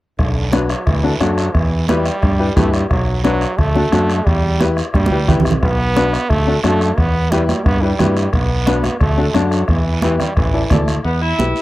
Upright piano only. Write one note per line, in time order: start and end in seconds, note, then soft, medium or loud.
0.52 0.70 D4 medium
0.52 0.70 F#4 medium
0.52 0.71 B4 medium
1.04 1.09 D4 medium
1.04 1.10 F#4 medium
1.04 1.10 A4 medium
1.20 1.44 D4 medium
1.20 1.44 F#4 medium
1.20 1.45 A4 medium
1.88 2.06 E4 medium
1.88 2.06 G4 medium
1.88 2.07 B4 loud
2.39 2.45 E4 medium
2.39 2.45 G4 medium
2.39 2.46 B4 medium
2.56 2.80 E4 medium
2.56 2.80 G4 medium
2.56 2.80 B4 medium
3.24 3.42 D4 medium
3.24 3.42 F#4 medium
3.24 3.42 B4 medium
3.75 3.81 D4 medium
3.75 3.81 F#4 medium
3.75 3.81 A4 medium
3.92 4.16 D4 medium
3.92 4.16 F#4 medium
3.92 4.16 A4 loud
4.60 4.78 E4 medium
4.60 4.78 G4 medium
4.60 4.78 B4 medium
5.11 5.17 E4 medium
5.11 5.17 G4 medium
5.11 5.17 B4 medium
5.28 5.52 E4 medium
5.28 5.52 G4 medium
5.28 5.52 B4 medium
5.96 6.14 D4 medium
5.96 6.14 F#4 medium
5.96 6.14 B4 medium
6.47 6.53 D4 medium
6.47 6.53 F#4 medium
6.47 6.53 A4 medium
6.64 6.88 D4 medium
6.64 6.88 F#4 medium
6.64 6.88 A4 medium
7.32 7.50 E4 medium
7.32 7.50 G4 medium
7.32 7.50 B4 medium
7.82 7.88 E4 medium
7.82 7.88 G4 medium
7.82 7.89 B4 medium
7.99 8.23 E4 medium
7.99 8.23 G4 medium
7.99 8.23 B4 medium
8.67 8.85 D4 medium
8.67 8.85 F#4 medium
8.67 8.85 B4 medium
9.17 9.24 D4 medium
9.17 9.24 F#4 medium
9.17 9.24 A4 medium
9.35 9.59 D4 medium
9.35 9.59 F#4 medium
9.35 9.59 A4 medium
10.03 10.21 E4 medium
10.03 10.21 G4 medium
10.03 10.21 B4 medium
10.54 10.60 E4 medium
10.54 10.60 A4 medium
10.54 10.60 D5 medium
10.71 10.95 E4 medium
10.71 10.95 A4 medium
10.71 10.95 D5 medium
11.38 11.56 E4 medium
11.38 11.57 G4 medium
11.38 11.57 B4 medium